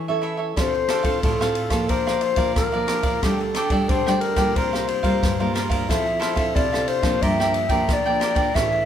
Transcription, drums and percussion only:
0.57 kick, cross-stick, ride
0.88 cross-stick, ride
1.04 kick, ride
1.23 kick, ride
1.41 cross-stick
1.55 ride
1.70 kick, cross-stick, ride
1.89 kick, ride
2.07 cross-stick
2.21 ride
2.36 kick, ride
2.56 kick, cross-stick, ride
2.88 cross-stick, ride
3.03 kick, ride
3.23 kick, cross-stick, ride
3.54 cross-stick, ride
3.70 kick, ride
3.89 kick, ride
4.07 cross-stick
4.21 ride
4.36 kick, cross-stick, ride
4.56 kick, ride
4.74 cross-stick
4.88 ride
5.04 kick, ride
5.23 kick, cross-stick, ride
5.55 cross-stick, ride
5.70 kick, ride
5.90 kick, cross-stick, ride
6.22 cross-stick, ride
6.37 kick, ride
6.56 kick, ride
6.74 cross-stick
6.88 ride
7.03 kick, cross-stick, ride
7.22 kick, ride
7.40 cross-stick
7.54 ride
7.69 kick, ride
7.89 kick, cross-stick, ride
8.21 cross-stick, ride
8.36 kick, ride
8.55 kick, cross-stick, ride

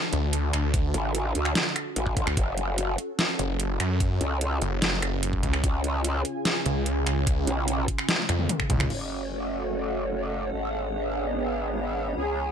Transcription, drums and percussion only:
0.13 closed hi-hat
0.33 closed hi-hat
0.53 finger snap, closed hi-hat
0.74 kick, closed hi-hat
0.94 closed hi-hat
1.15 closed hi-hat
1.35 closed hi-hat
1.45 finger snap
1.55 snare, closed hi-hat
1.76 finger snap, closed hi-hat
1.96 closed hi-hat
2.07 kick
2.17 kick, closed hi-hat
2.27 finger snap
2.37 kick, closed hi-hat
2.58 closed hi-hat
2.78 closed hi-hat
2.98 closed hi-hat
3.19 snare, closed hi-hat
3.39 closed hi-hat
3.60 closed hi-hat
3.80 finger snap, closed hi-hat
4.00 kick, closed hi-hat
4.21 closed hi-hat
4.41 closed hi-hat
4.62 closed hi-hat
4.82 snare, closed hi-hat
5.02 finger snap, closed hi-hat
5.23 closed hi-hat
5.33 kick
5.43 kick, closed hi-hat
5.53 finger snap
5.64 kick, closed hi-hat
5.84 closed hi-hat
6.04 closed hi-hat
6.25 closed hi-hat
6.45 snare, closed hi-hat
6.66 closed hi-hat
6.86 closed hi-hat
7.07 finger snap, closed hi-hat
7.27 kick, closed hi-hat
7.47 closed hi-hat
7.68 closed hi-hat
7.88 kick, closed hi-hat
7.98 finger snap
8.09 snare, closed hi-hat, high tom
8.19 high tom
8.29 finger snap, closed hi-hat
8.39 mid tom
8.49 closed hi-hat, mid tom
8.60 finger snap, kick
8.70 kick, closed hi-hat, mid tom
8.80 finger snap, mid tom
8.90 crash

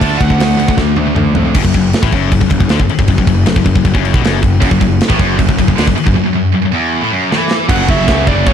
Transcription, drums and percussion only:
0.01 kick, crash
0.21 kick, crash
0.30 kick
0.40 snare, crash
0.60 crash
0.68 kick
0.78 kick, snare
0.96 high tom
1.16 mid tom
1.35 floor tom
1.55 kick, crash
1.65 kick
1.74 kick, crash
1.93 snare, crash
2.03 kick
2.12 kick, crash
2.32 kick, crash
2.41 kick
2.50 kick, crash
2.60 kick
2.69 snare, crash
2.80 kick
2.89 crash
2.99 kick
3.08 kick, crash
3.18 kick
3.27 kick, crash
3.46 snare, crash
3.56 kick
3.66 kick, crash
3.76 kick
3.85 kick, crash
3.95 kick
4.05 crash
4.14 kick
4.24 snare, crash
4.43 kick, crash
4.62 kick, crash
4.71 kick
4.81 kick, crash
5.01 snare, crash
5.10 kick
5.20 kick, crash
5.39 kick, crash
5.49 kick
5.59 kick, crash
5.68 kick
5.78 snare, crash
5.87 kick
5.98 crash
6.07 kick
7.32 snare
7.51 snare
7.69 kick, crash, china
7.89 kick
8.08 kick, snare, china
8.27 kick
8.47 kick, china

